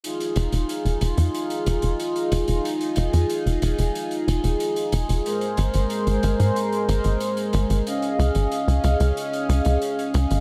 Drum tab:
HH |xxxxxxxxxxxxxxxx|xxxxxxxxxxxxxxxx|xxxxxxxxxxxxxxxx|xxxxxxxxxxxxxxxx|